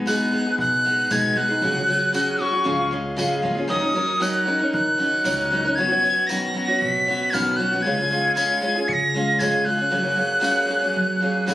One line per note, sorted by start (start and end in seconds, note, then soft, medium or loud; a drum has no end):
0.06 0.32 B2 medium
0.06 0.31 G#3 medium
0.06 0.32 B3 medium
0.06 0.33 D#4 medium
0.06 0.34 G#4 medium
0.06 0.55 F#6 loud
0.06 tambourine medium
0.32 0.45 G#3 medium
0.32 0.46 B3 medium
0.32 0.46 D#4 medium
0.32 0.45 G#4 medium
0.46 0.85 B3 soft
0.46 0.86 D#4 soft
0.46 0.85 G#4 medium
0.58 1.08 B2 loud
0.58 1.13 F#6 medium
0.85 1.09 G#3 medium
0.85 1.10 B3 medium
0.85 1.11 D#4 medium
0.85 1.12 G#4 medium
1.10 1.63 B2 loud
1.10 1.36 B2 medium
1.10 1.34 G#3 medium
1.10 1.36 B3 medium
1.10 1.37 D#4 medium
1.10 1.38 G#4 medium
1.10 1.39 G#6 loud
1.10 tambourine medium
1.36 1.49 G#3 medium
1.36 1.50 B3 medium
1.36 1.49 D#4 medium
1.36 1.47 G#4 medium
1.36 2.14 F#6 loud
1.49 1.63 B3 soft
1.49 1.63 D#4 medium
1.49 1.62 G#4 medium
1.62 1.87 C#2 medium
1.62 1.75 C#3 medium
1.62 1.75 F#3 medium
1.62 1.76 C#4 medium
1.62 1.75 F#4 medium
1.62 1.74 G#4 medium
1.75 1.87 C#4 soft
1.75 1.88 F#4 soft
1.75 1.88 G#4 medium
1.87 2.12 F#3 medium
1.87 2.13 C#4 medium
1.87 2.13 F#4 medium
1.87 2.13 G#4 medium
2.13 2.39 C#3 medium
2.13 2.37 F#3 medium
2.13 2.39 C#4 medium
2.13 2.40 F#4 medium
2.13 2.40 G#4 medium
2.13 2.43 F#6 medium
2.13 tambourine medium
2.39 2.52 F#3 medium
2.39 2.53 C#4 medium
2.39 2.52 F#4 medium
2.39 2.50 G#4 medium
2.39 2.93 C#6 medium
2.51 2.64 C#4 soft
2.51 2.66 F#4 soft
2.51 2.65 G#4 medium
2.64 3.15 C#2 medium
2.64 2.91 C#3 medium
2.64 2.90 G#3 medium
2.64 2.91 C#4 medium
2.64 2.92 F4 medium
2.64 2.92 G#4 medium
2.91 3.16 G#3 medium
2.91 3.16 C#4 medium
2.91 3.17 F4 medium
2.91 3.18 G#4 medium
3.17 3.42 C#2 medium
3.17 3.43 C#3 medium
3.17 3.41 G#3 medium
3.17 3.42 C#4 medium
3.17 3.43 F4 loud
3.17 3.44 G#4 medium
3.17 tambourine medium
3.42 3.69 D#2 medium
3.42 3.56 G#3 medium
3.42 3.56 C#4 medium
3.42 3.56 F4 medium
3.42 3.54 G#4 medium
3.55 3.68 C#4 soft
3.55 3.69 F4 soft
3.55 3.69 G#4 medium
3.68 3.94 D#2 medium
3.68 3.82 D#3 medium
3.68 3.82 F#3 medium
3.68 3.82 C#4 medium
3.68 3.81 D#4 medium
3.68 3.79 A#4 medium
3.68 4.23 D#6 medium
3.80 3.94 C#4 soft
3.80 3.95 D#4 soft
3.80 3.94 A#4 soft
3.93 4.19 F#3 medium
3.93 4.20 C#4 medium
3.93 4.21 D#4 medium
3.93 4.21 A#4 medium
4.20 4.47 D#3 medium
4.20 4.44 F#3 medium
4.20 4.46 C#4 medium
4.20 4.47 D#4 medium
4.20 4.47 A#4 medium
4.20 4.72 F#6 medium
4.20 tambourine medium
4.45 4.59 F#3 medium
4.45 4.60 C#4 medium
4.45 4.60 D#4 medium
4.45 4.58 A#4 medium
4.59 4.98 C#4 soft
4.59 4.99 D#4 soft
4.59 4.99 A#4 medium
4.73 5.23 D#3 loud
4.73 5.77 F#6 loud
4.98 5.24 F#3 medium
4.98 5.25 C#4 medium
4.98 5.26 D#4 medium
4.98 5.25 A#4 medium
5.24 5.77 C#2 medium
5.24 5.51 D#3 medium
5.24 5.49 F#3 medium
5.24 5.51 C#4 medium
5.24 5.52 D#4 medium
5.24 5.52 A#4 medium
5.24 tambourine medium
5.51 5.64 F#3 medium
5.51 5.65 C#4 medium
5.51 5.65 D#4 medium
5.51 5.63 A#4 medium
5.64 5.79 C#4 soft
5.64 5.78 D#4 soft
5.64 5.77 A#4 medium
5.75 6.02 B1 loud
5.75 5.90 B2 medium
5.75 5.91 D#3 medium
5.75 5.91 F#3 medium
5.75 5.90 B3 medium
5.75 6.28 G#6 loud
5.80 5.89 C#4 medium
5.80 5.87 F#4 medium
5.88 6.01 F#3 soft
5.88 6.03 B3 soft
5.88 6.03 C#4 soft
5.88 6.02 F#4 medium
6.03 6.29 F#3 medium
6.03 6.29 B3 medium
6.03 6.29 C#4 medium
6.03 6.31 F#4 medium
6.27 6.55 B2 medium
6.27 6.55 D#3 medium
6.27 6.52 F#3 medium
6.27 6.54 B3 medium
6.27 6.55 C#4 medium
6.27 6.80 A#6 loud
6.27 tambourine medium
6.32 6.56 F#4 medium
6.54 6.67 F#3 medium
6.54 6.68 B3 medium
6.54 6.68 C#4 medium
6.54 6.67 F#4 medium
6.68 7.06 F#3 soft
6.68 7.07 B3 soft
6.68 7.07 C#4 medium
6.68 7.07 F#4 soft
6.79 7.31 B2 medium
6.79 7.32 B6 loud
7.07 7.32 F#3 medium
7.07 7.33 B3 medium
7.07 7.34 C#4 medium
7.07 7.34 F#4 medium
7.30 7.85 B1 medium
7.30 7.59 B2 medium
7.30 7.59 D#3 medium
7.30 7.58 F#3 medium
7.30 7.58 F6 loud
7.30 7.34 G#6 medium
7.30 tambourine medium
7.34 7.59 B3 medium
7.34 7.60 C#4 medium
7.34 7.60 F#4 medium
7.56 7.72 F#3 medium
7.56 7.72 B3 medium
7.56 7.84 F#6 loud
7.61 7.72 C#4 medium
7.61 7.71 F#4 medium
7.72 7.85 F#3 soft
7.72 7.86 B3 medium
7.72 7.85 C#4 medium
7.72 7.85 F#4 medium
7.82 8.10 C#2 medium
7.82 7.97 C#3 medium
7.82 7.98 G#3 medium
7.82 8.34 G#6 loud
7.86 7.98 C#4 medium
7.86 7.98 F4 medium
7.86 7.96 G#4 medium
7.97 8.09 C#4 soft
7.97 8.11 F4 medium
7.97 8.11 G#4 medium
8.09 8.35 G#3 medium
8.09 8.36 C#4 medium
8.09 8.36 F4 medium
8.09 8.36 G#4 medium
8.35 8.62 C#3 medium
8.35 8.60 G#3 medium
8.35 8.61 C#4 medium
8.35 8.62 F4 medium
8.35 8.63 G#4 medium
8.35 8.90 G#6 loud
8.35 tambourine medium
8.61 8.75 G#3 medium
8.61 8.75 C#4 medium
8.61 8.76 F4 medium
8.61 8.74 G#4 medium
8.75 9.14 C#4 soft
8.75 9.15 F4 soft
8.75 9.14 G#4 medium
8.88 9.38 C#3 loud
8.88 8.94 C#7 medium
8.93 9.40 A#6 medium
9.14 9.39 G#3 medium
9.14 9.40 C#4 medium
9.14 9.40 F4 medium
9.14 9.41 G#4 medium
9.39 9.66 C#3 medium
9.39 9.93 C#3 medium
9.39 9.64 G#3 medium
9.39 9.65 C#4 medium
9.39 9.66 F4 medium
9.39 9.67 G#4 medium
9.39 9.66 G#6 loud
9.39 tambourine medium
9.65 9.79 G#3 medium
9.65 9.79 C#4 medium
9.65 9.78 F4 medium
9.65 9.76 G#4 medium
9.65 11.54 F#6 medium
9.77 9.91 C#4 soft
9.77 9.92 F4 medium
9.77 9.91 G#4 medium
9.90 10.04 F#2 medium
9.90 10.17 F#2 medium
9.90 10.05 C#3 medium
9.90 10.05 F#3 medium
9.90 10.04 A#3 medium
9.90 10.03 C#4 medium
9.90 10.02 G#4 medium
10.03 10.14 F#3 soft
10.03 10.15 A#3 soft
10.03 10.16 C#4 medium
10.03 10.17 G#4 medium
10.15 10.40 F#3 medium
10.15 10.41 A#3 medium
10.15 10.41 C#4 medium
10.15 10.42 G#4 medium
10.40 10.68 F#2 medium
10.40 10.69 C#3 medium
10.40 10.66 F#3 medium
10.40 10.67 A#3 medium
10.40 10.68 C#4 medium
10.40 10.70 G#4 medium
10.44 tambourine medium
10.67 10.82 F#3 medium
10.67 10.82 A#3 medium
10.67 10.81 C#4 medium
10.67 10.80 G#4 medium
10.81 11.19 F#3 soft
10.81 11.20 A#3 soft
10.81 11.21 C#4 medium
10.81 11.21 G#4 medium
10.96 11.46 F#3 loud
11.20 11.46 F#3 medium
11.20 11.47 A#3 medium
11.20 11.47 C#4 medium
11.20 11.48 G#4 medium
11.47 11.54 D#2 medium
11.47 11.54 F#2 medium
11.47 11.54 C#3 medium
11.47 11.54 F#3 loud
11.47 11.54 A#3 loud
11.47 11.54 C#4 medium
11.47 11.54 G#4 medium
11.47 tambourine medium